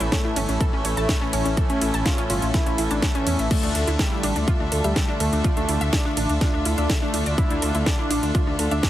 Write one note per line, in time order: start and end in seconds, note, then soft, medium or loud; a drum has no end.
0.00 0.09 A1 medium
0.00 0.94 A2 medium
0.00 0.94 E3 medium
0.00 0.94 A3 loud
0.00 3.47 C#4 medium
0.00 3.47 E4 medium
0.00 0.08 E4 medium
0.00 8.90 A4 medium
0.00 8.90 E5 medium
0.00 closed hi-hat soft
0.12 0.44 A3 loud
0.12 0.17 C#5 medium
0.12 kick loud
0.12 snare loud
0.12 closed hi-hat soft
0.25 0.29 E4 medium
0.36 0.45 G1 medium
0.36 0.48 C#4 loud
0.36 open hi-hat loud
0.36 ride medium
0.49 0.57 A1 medium
0.49 0.60 C#4 medium
0.49 closed hi-hat soft
0.61 0.66 A4 loud
0.61 kick loud
0.61 closed hi-hat soft
0.73 0.82 A1 medium
0.73 0.81 C#4 medium
0.85 0.94 A1 medium
0.85 0.93 C#5 medium
0.85 open hi-hat loud
0.85 ride medium
0.97 1.06 A1 medium
0.97 1.54 A2 medium
0.97 1.54 E3 medium
0.97 1.21 A3 loud
0.97 1.54 A3 loud
0.97 1.02 A5 loud
0.97 closed hi-hat soft
1.09 1.14 C#5 medium
1.09 kick loud
1.09 snare loud
1.09 closed hi-hat soft
1.21 1.26 C#4 loud
1.33 1.42 A1 loud
1.33 1.57 C#4 medium
1.33 1.41 C#5 medium
1.33 open hi-hat loud
1.33 ride medium
1.46 1.54 A1 medium
1.46 1.57 C#4 medium
1.46 closed hi-hat soft
1.57 2.76 A2 medium
1.57 2.76 E3 medium
1.57 2.76 A3 loud
1.57 1.62 A4 loud
1.57 kick loud
1.57 closed hi-hat soft
1.70 1.78 A1 medium
1.70 1.94 C#4 loud
1.70 1.78 C#4 medium
1.70 closed hi-hat soft
1.81 1.91 A1 loud
1.81 1.93 E4 medium
1.81 open hi-hat loud
1.81 ride medium
1.94 2.02 A1 medium
1.94 1.99 A5 loud
1.94 closed hi-hat soft
2.06 2.22 F4 medium
2.06 2.11 C#5 medium
2.06 kick loud
2.06 snare loud
2.06 closed hi-hat soft
2.18 2.23 C#4 loud
2.18 closed hi-hat soft
2.30 2.39 G1 medium
2.30 2.35 C#4 medium
2.30 2.46 F4 medium
2.30 open hi-hat loud
2.30 ride medium
2.42 2.51 A1 medium
2.42 2.53 C#4 medium
2.42 closed hi-hat soft
2.54 2.78 E4 loud
2.54 2.62 A4 medium
2.54 kick loud
2.54 snare medium
2.54 closed hi-hat soft
2.66 2.75 A1 medium
2.66 2.74 C#4 medium
2.66 closed hi-hat soft
2.78 2.87 A1 loud
2.78 3.48 A2 medium
2.78 3.48 E3 medium
2.78 3.48 A3 loud
2.78 2.90 E4 medium
2.78 open hi-hat loud
2.78 ride medium
2.91 2.99 A1 medium
2.91 3.06 D4 medium
2.91 2.99 A5 medium
2.91 closed hi-hat soft
3.02 3.08 C#5 medium
3.02 kick loud
3.02 snare loud
3.02 closed hi-hat soft
3.15 3.39 C#4 medium
3.15 3.20 C#4 loud
3.15 closed hi-hat soft
3.27 3.36 E2 medium
3.27 3.32 C#4 medium
3.27 open hi-hat loud
3.27 ride medium
3.39 3.48 A1 medium
3.39 3.50 E5 medium
3.39 closed hi-hat soft
3.51 4.81 D3 medium
3.51 3.67 A3 loud
3.51 4.81 A3 medium
3.51 4.81 D4 medium
3.51 8.90 D4 medium
3.51 3.62 D4 medium
3.51 8.90 F4 medium
3.51 kick loud
3.51 closed hi-hat soft
3.51 crash medium
3.63 3.72 D2 medium
3.63 3.71 D4 medium
3.63 closed hi-hat soft
3.75 3.84 D2 medium
3.75 3.83 A4 medium
3.75 open hi-hat loud
3.75 ride medium
3.87 3.96 D2 medium
3.87 3.95 E4 medium
3.87 closed hi-hat soft
3.99 4.31 G3 loud
3.99 4.04 A4 medium
3.99 kick loud
3.99 snare loud
3.99 closed hi-hat soft
4.12 4.16 E4 medium
4.23 4.33 A1 medium
4.23 4.35 D4 loud
4.23 open hi-hat loud
4.23 ride medium
4.36 4.44 D2 medium
4.36 4.47 D4 medium
4.36 closed hi-hat soft
4.48 4.53 F4 loud
4.48 kick loud
4.48 closed hi-hat soft
4.60 4.69 D2 medium
4.60 4.68 D4 medium
4.72 4.81 D2 medium
4.72 4.80 A4 medium
4.72 open hi-hat loud
4.72 ride medium
4.84 4.93 D2 medium
4.84 5.42 D3 medium
4.84 5.08 G3 loud
4.84 5.42 A3 medium
4.84 5.42 D4 loud
4.84 4.89 E5 loud
4.84 closed hi-hat soft
4.96 5.01 A4 medium
4.96 kick loud
4.96 snare loud
4.96 closed hi-hat soft
5.08 5.13 D4 loud
5.20 5.29 D2 loud
5.20 5.44 A3 medium
5.20 5.29 A4 medium
5.20 open hi-hat loud
5.20 ride medium
5.33 5.41 D2 medium
5.33 5.44 D4 medium
5.33 closed hi-hat soft
5.44 7.11 D3 medium
5.44 7.11 A3 medium
5.44 7.11 D4 loud
5.44 5.49 F4 loud
5.44 kick loud
5.44 closed hi-hat soft
5.57 5.65 D2 medium
5.57 5.81 A3 loud
5.57 5.65 D4 medium
5.57 closed hi-hat soft
5.69 5.78 D2 loud
5.69 5.80 E4 medium
5.69 open hi-hat loud
5.69 ride medium
5.81 5.90 D2 medium
5.81 5.86 E5 loud
5.81 closed hi-hat soft
5.93 6.09 D4 medium
5.93 5.98 A4 medium
5.93 kick loud
5.93 snare loud
5.93 closed hi-hat soft
6.05 6.10 D4 loud
6.17 6.26 A1 loud
6.17 6.33 D4 medium
6.17 6.22 D4 medium
6.17 open hi-hat loud
6.17 ride medium
6.29 6.38 D2 medium
6.29 6.41 D4 medium
6.29 closed hi-hat soft
6.41 6.65 D4 loud
6.41 6.50 F4 medium
6.41 kick loud
6.41 snare medium
6.41 closed hi-hat soft
6.54 6.62 D2 medium
6.54 6.62 D4 medium
6.65 6.74 D2 medium
6.65 6.77 E4 medium
6.65 open hi-hat loud
6.65 ride medium
6.78 6.86 D2 medium
6.78 6.94 D4 medium
6.78 6.86 E5 medium
6.78 closed hi-hat soft
6.90 6.95 A4 medium
6.90 kick loud
6.90 snare loud
6.90 closed hi-hat soft
7.02 7.26 A3 loud
7.02 7.07 D4 loud
7.14 7.23 D2 loud
7.14 7.35 D3 medium
7.14 7.35 A3 medium
7.14 7.19 D4 medium
7.14 7.35 D4 medium
7.14 open hi-hat loud
7.14 ride medium
7.26 7.35 D2 medium
7.26 7.37 D5 medium
7.26 closed hi-hat soft
7.38 8.68 D3 medium
7.38 8.68 A3 medium
7.38 8.68 D4 loud
7.38 7.49 D4 medium
7.38 7.54 E4 loud
7.38 kick loud
7.38 closed hi-hat soft
7.50 7.59 D2 medium
7.50 7.58 D4 medium
7.50 closed hi-hat soft
7.62 7.71 D2 loud
7.62 7.71 A4 medium
7.62 open hi-hat loud
7.62 ride medium
7.75 7.83 D2 medium
7.75 7.83 E4 medium
7.75 closed hi-hat soft
7.86 8.19 D4 medium
7.86 7.91 A4 medium
7.86 kick loud
7.86 snare loud
7.86 closed hi-hat soft
7.99 8.04 E4 medium
8.11 8.20 A1 medium
8.11 8.22 D4 loud
8.11 open hi-hat loud
8.11 ride medium
8.23 8.32 D2 medium
8.23 8.34 D4 medium
8.23 closed hi-hat soft
8.35 8.40 F4 loud
8.35 kick loud
8.35 closed hi-hat soft
8.47 8.56 D2 medium
8.47 8.55 D4 medium
8.59 8.68 D2 medium
8.59 8.67 A4 medium
8.59 open hi-hat loud
8.59 ride medium
8.71 8.80 D2 medium
8.71 8.90 D3 medium
8.71 8.90 A3 medium
8.71 8.90 D4 loud
8.71 8.90 D4 medium
8.71 8.76 E5 loud
8.71 closed hi-hat soft
8.83 8.88 A4 medium
8.83 kick loud
8.83 snare loud
8.83 closed hi-hat soft